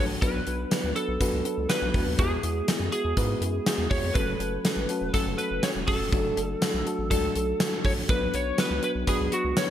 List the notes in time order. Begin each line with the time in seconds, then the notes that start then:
Already playing: A#1 F#3 A3 D4 F#4
0.00 A4
0.22 B1 F#3 B3 D4 F#4 B4, kick, closed hi-hat
0.46 B1 F#3 B3 D4 F#4 B4, closed hi-hat
0.71 F#3 B3 D4 F#4 B4, snare, closed hi-hat, tambourine
0.84 D2
0.95 F#3 B3 D4 F#4 A4 B4, closed hi-hat
1.08 B1
1.20 F#3 B3 D4 F#4 B4, kick, closed hi-hat
1.33 C#2
1.45 F#3 B3 D4 F#4 B4, closed hi-hat
1.58 C#2
1.69 F#3 B3 D4 F#4 B4, snare, closed hi-hat, tambourine
1.82 B1
1.94 D2 F#3 B3 D4 F#4 B4, kick, open hi-hat
2.06 D#2
2.19 E2 G#3 B3 E4 F#4 G#4, kick, closed hi-hat
2.43 E2 G#3 B3 E4 F#4 G#4, closed hi-hat
2.67 G#3 B3 E4 F#4 G#4, snare, closed hi-hat, tambourine
2.80 F#2
2.92 G#3 B3 E4 F#4 G#4, closed hi-hat
3.05 E2
3.17 G#2 G#3 B3 E4 F#4 B4, kick, closed hi-hat
3.41 F#2 G#3 B3 E4 F#4 G#4, closed hi-hat
3.66 G#3 B3 E4 F#4 G#4, snare, closed hi-hat, tambourine
3.78 E2
3.90 E2 G#3 B3 E4 F#4 G#4 C#5, kick, open hi-hat
4.03 F2
4.14 F#1 F#3 A3 C#4 F#4 A4 B4, kick, closed hi-hat
4.39 F#1 F#3 A3 C#4 F#4 A4, closed hi-hat
4.64 F#3 A3 C#4 F#4 A4, snare, closed hi-hat, tambourine
4.77 A1
4.89 F#3 A3 C#4 F#4 A4, closed hi-hat
5.01 E1
5.14 F#3 A3 C#4 F#4 A4, kick, closed hi-hat
5.26 F#1
5.38 F#3 A3 C#4 F#4 A4 B4, closed hi-hat
5.51 F#1
5.63 F#3 A3 C#4 F#4 A4 C#5, snare, closed hi-hat, tambourine
5.76 E1
5.87 E1 F#3 A3 C#4 F#4 A4, kick, open hi-hat
6.00 F1
6.12 F#1 F#3 A3 D4 F#4 A4, kick, closed hi-hat
6.36 F#1 F#3 A3 D4 F#4 A4, closed hi-hat
6.61 F#3 A3 D4 F#4 A4, snare, closed hi-hat, tambourine
6.74 B1
6.86 F#3 A3 D4 F#4 A4, closed hi-hat
6.99 A1
7.10 C#2 F#3 A3 D4 F#4 A4, kick, closed hi-hat
7.35 B1 F#3 A3 D4 F#4 A4, closed hi-hat
7.59 F#3 A3 D4 F#4 A4, snare, closed hi-hat, tambourine
7.84 A#1 F#3 A3 D4 F#4 A4 C#5, kick, open hi-hat
8.09 B1 F#3 B3 D4 F#4 B4, kick, closed hi-hat
8.33 B1 F#3 B3 D4 F#4 B4 C#5, closed hi-hat
8.57 F#3 B3 D4 F#4 B4, snare, closed hi-hat, tambourine
8.71 C#2
8.82 F#3 B3 D4 F#4 B4, closed hi-hat
8.95 B1
9.07 F#3 B3 D4 F#4 G#4 B4, kick, closed hi-hat
9.20 C#2
9.32 F#3 B3 D4 F#4 B4, closed hi-hat
9.44 C#2
9.56 F#3 B3 D4 F#4 B4 C#5, snare, closed hi-hat, tambourine